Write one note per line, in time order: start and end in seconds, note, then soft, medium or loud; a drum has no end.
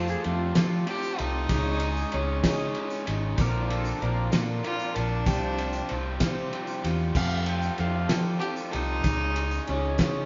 0.00 0.14 F2 medium
0.00 0.24 F3 medium
0.00 0.22 A3 medium
0.00 0.23 C4 medium
0.00 0.25 C4 medium
0.00 1.47 C4 medium
0.00 0.24 F4 medium
0.00 0.24 F4 loud
0.00 1.47 F4 medium
0.00 0.26 G4 medium
0.00 1.47 G4 medium
0.00 0.25 A4 medium
0.00 1.47 A4 medium
0.08 0.24 G#4 medium
0.08 tambourine medium
0.23 0.52 F2 medium
0.23 0.84 A3 medium
0.23 0.56 C4 medium
0.23 0.55 F4 medium
0.23 0.56 F4 medium
0.23 0.55 G4 medium
0.23 0.53 A4 medium
0.23 ride medium
0.54 0.83 F3 loud
0.54 1.19 F3 medium
0.54 1.20 A3 medium
0.54 0.85 C4 medium
0.54 0.86 F4 medium
0.54 0.87 F4 loud
0.54 1.18 G4 medium
0.54 0.87 A4 medium
0.54 snare loud
0.54 ride loud
0.54 tambourine medium
0.85 1.47 A3 medium
0.85 1.19 C4 medium
0.85 1.18 F4 medium
0.85 1.21 G4 loud
0.85 1.16 A4 medium
0.85 ride medium
1.02 tambourine medium
1.18 1.46 C2 medium
1.18 1.49 C4 medium
1.18 2.15 D#4 loud
1.18 1.48 F4 medium
1.18 1.50 G4 medium
1.18 1.48 A4 medium
1.18 ride medium
1.48 2.03 C#2 loud
1.48 2.12 C#3 medium
1.48 2.11 G#3 medium
1.48 1.81 C#4 medium
1.48 1.80 D#4 medium
1.48 3.37 D#4 medium
1.48 1.78 G#4 medium
1.48 kick loud
1.48 ride loud
1.48 tambourine medium
1.52 3.38 G#3 medium
1.52 3.37 C#4 medium
1.52 3.37 G#4 medium
1.79 2.12 C#4 medium
1.79 2.13 D#4 medium
1.79 2.13 G#4 medium
1.79 ride medium
1.97 tambourine medium
2.12 2.40 C#2 medium
2.12 2.73 G#3 medium
2.12 2.45 C#4 medium
2.12 2.44 C#4 medium
2.12 2.44 D#4 medium
2.12 2.42 G#4 medium
2.12 ride medium
2.43 2.71 C#3 medium
2.43 3.08 C#3 medium
2.43 3.08 G#3 medium
2.43 3.11 C#4 medium
2.43 2.75 C#4 medium
2.43 2.76 D#4 medium
2.43 2.77 G#4 medium
2.43 kick medium
2.43 snare loud
2.43 ride loud
2.43 tambourine loud
2.75 3.36 G#3 medium
2.75 3.07 C#4 medium
2.75 3.06 D#4 medium
2.75 3.04 G#4 medium
2.75 ride medium
2.90 tambourine medium
3.05 3.34 G#1 medium
3.05 3.37 C#4 medium
3.05 3.36 D#4 medium
3.05 3.36 G#4 medium
3.05 ride medium
3.36 3.91 A#1 loud
3.36 4.00 A#2 loud
3.36 4.00 D3 medium
3.36 3.71 F3 loud
3.36 3.70 A#3 medium
3.36 5.25 A#3 medium
3.36 4.02 C4 medium
3.36 5.24 C4 medium
3.36 3.68 D4 medium
3.36 5.25 D4 medium
3.36 5.25 F4 medium
3.36 3.67 A#4 loud
3.36 kick loud
3.36 ride loud
3.36 tambourine medium
3.41 3.70 A#4 loud
3.68 3.98 F3 medium
3.68 3.98 A#3 medium
3.68 4.00 D4 medium
3.68 4.01 A4 loud
3.68 4.01 A#4 medium
3.68 ride medium
3.85 tambourine medium
3.99 4.28 A#1 loud
3.99 4.34 F3 medium
3.99 4.32 A#3 medium
3.99 4.31 C4 medium
3.99 4.32 D4 medium
3.99 4.30 A#4 medium
3.99 ride medium
4.04 4.48 A#4 loud
4.31 4.59 A#2 loud
4.31 4.96 A#2 medium
4.31 4.96 D3 medium
4.31 4.63 F3 medium
4.31 4.63 A#3 medium
4.31 4.96 C4 medium
4.31 4.64 D4 medium
4.31 4.65 A#4 medium
4.31 snare loud
4.31 ride loud
4.31 tambourine loud
4.63 4.97 F3 medium
4.63 4.95 A#3 medium
4.63 4.94 D4 medium
4.63 4.97 F4 loud
4.63 4.93 A#4 medium
4.63 ride medium
4.79 tambourine medium
4.94 5.22 A#1 medium
4.94 5.26 F3 medium
4.94 5.25 A#3 medium
4.94 5.26 C4 medium
4.94 5.91 D4 loud
4.94 5.25 D4 medium
4.94 5.24 A#4 medium
4.94 ride medium
5.25 5.80 C2 medium
5.25 5.89 C3 medium
5.25 5.88 F3 medium
5.25 7.13 G3 medium
5.25 5.60 G3 medium
5.25 7.13 C4 medium
5.25 5.90 C4 medium
5.25 7.14 F4 medium
5.25 5.58 F4 medium
5.25 7.13 G4 medium
5.25 5.57 G4 loud
5.25 kick loud
5.25 ride medium
5.25 tambourine loud
5.57 5.90 G3 medium
5.57 5.90 F4 medium
5.57 5.91 G4 medium
5.57 ride medium
5.57 tambourine soft
5.73 tambourine medium
5.88 6.17 C2 medium
5.88 6.50 F3 medium
5.88 6.21 G3 medium
5.88 6.21 C4 medium
5.88 6.20 C4 medium
5.88 6.20 F4 medium
5.88 6.18 G4 medium
5.88 ride medium
6.19 6.48 C3 medium
6.19 6.84 C3 medium
6.19 6.84 F3 medium
6.19 6.51 G3 medium
6.19 6.84 C4 medium
6.19 6.89 C4 medium
6.19 6.52 F4 medium
6.19 6.54 G4 medium
6.19 kick medium
6.19 snare loud
6.19 ride loud
6.19 tambourine loud
6.51 7.12 F3 medium
6.51 6.84 G3 medium
6.51 6.82 F4 medium
6.51 6.81 G4 medium
6.51 ride medium
6.67 tambourine medium
6.82 7.11 E2 medium
6.82 7.14 G3 medium
6.82 7.14 F4 medium
6.82 7.13 G4 medium
6.82 ride medium
6.82 tambourine soft
6.87 7.15 C4 soft
6.99 tambourine soft
7.13 7.69 F2 medium
7.13 7.75 F3 medium
7.13 9.03 A3 medium
7.13 7.77 A3 medium
7.13 7.47 C4 medium
7.13 9.03 C4 medium
7.13 9.03 F4 medium
7.13 7.45 F4 loud
7.13 7.79 G4 medium
7.13 9.04 G4 medium
7.13 7.44 A4 medium
7.13 7.47 F5 loud
7.13 kick loud
7.13 tambourine medium
7.13 crash loud
7.45 7.76 C4 medium
7.45 7.78 F4 medium
7.45 7.78 A4 medium
7.45 7.78 G5 medium
7.45 ride medium
7.62 tambourine medium
7.77 8.06 F2 medium
7.77 8.38 F3 medium
7.77 8.09 A3 medium
7.77 8.10 C4 medium
7.77 8.08 F4 medium
7.77 8.08 G4 medium
7.77 8.07 A4 medium
7.77 8.25 F5 loud
7.77 ride medium
8.08 8.74 F3 medium
8.08 8.38 F3 loud
8.08 8.74 A3 medium
8.08 8.39 C4 medium
8.08 8.40 F4 medium
8.08 8.72 G4 medium
8.08 8.41 A4 medium
8.08 snare loud
8.08 ride loud
8.08 tambourine loud
8.39 9.02 F3 medium
8.39 8.73 C4 medium
8.39 8.72 F4 medium
8.39 8.54 G4 loud
8.39 8.70 A4 medium
8.39 ride medium
8.56 tambourine medium
8.70 9.01 C2 medium
8.70 9.63 D#4 loud
8.70 9.03 F4 medium
8.70 9.04 G4 medium
8.70 9.02 A4 medium
8.70 ride medium
8.74 9.04 C4 medium
9.03 9.58 C#2 medium
9.03 9.67 C#3 medium
9.03 9.66 G#3 medium
9.03 10.26 G#3 medium
9.03 9.37 C#4 medium
9.03 10.26 C#4 medium
9.03 9.36 D#4 medium
9.03 10.26 D#4 medium
9.03 9.34 G#4 medium
9.03 10.26 G#4 medium
9.03 kick loud
9.03 ride loud
9.03 tambourine medium
9.35 9.67 C#4 medium
9.35 9.68 D#4 medium
9.35 9.70 G#4 medium
9.35 ride medium
9.51 tambourine medium
9.67 9.95 C#2 medium
9.67 10.26 G#3 medium
9.67 9.97 C#4 medium
9.67 10.01 C#4 medium
9.67 9.99 D#4 medium
9.67 9.98 G#4 medium
9.67 ride medium
9.98 10.26 C#3 loud
9.98 10.26 C#3 medium
9.98 10.26 G#3 medium
9.98 10.26 C#4 medium
9.98 10.26 D#4 medium
9.98 10.26 G#4 medium
9.98 kick medium
9.98 snare loud
9.98 ride loud
9.98 tambourine loud